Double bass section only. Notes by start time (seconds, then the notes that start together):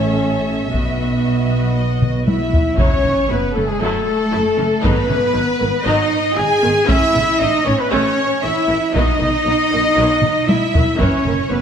Already playing: A1
0.74 B1
2.79 F#1
3.04 F#1
3.30 F#1
3.57 F#1
3.82 F#1
4.33 F#1
4.59 F#1
4.84 G#1
5.10 G#1
5.35 G#1
5.61 G#1
5.86 G#1
6.39 G#1
6.65 G#1
6.89 A1
7.15 A1
7.40 A1
7.67 A1
7.93 A1
8.43 A1
8.69 A1
8.94 B1
9.20 B1
9.46 B1
9.72 B1
9.97 B1
10.49 B1
10.74 B1
11.00 F#1
11.25 F#1
11.51 F#1